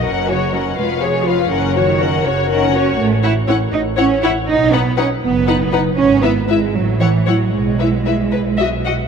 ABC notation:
X:1
M:6/8
L:1/8
Q:3/8=80
K:F#mix
V:1 name="Violin section"
f c f ^e c e | f c f c f c | [K:E] z f f z f f | z f f z f f |
z e e z f f | z e e z d d |]
V:2 name="Violin section"
A c A B c B | A c A c A c | [K:E] z c c z c c | z B B z B B |
z B B z c c | z B B B e f |]
V:3 name="Viola section"
C F C ^E G E | C F C F C F | [K:E] z E E z E E | z D D z D D |
z E E z E E | z E E z F F |]
V:4 name="Cello section" clef=bass
z C, F, G, ^E,2 | E, D,2 C, D, C | [K:E] A, E C D C E | D B, C B,2 z |
C B, G, F, E, F, | G,4- G, z |]
V:5 name="Double bass section" clef=bass
F,,,3 ^E,,,3 | F,,,3 F,,,3 | [K:E] A,,,3 A,,,3 | B,,,3 F,,,3 |
G,,,3 A,,,3 | B,,,3 B,,,3 |]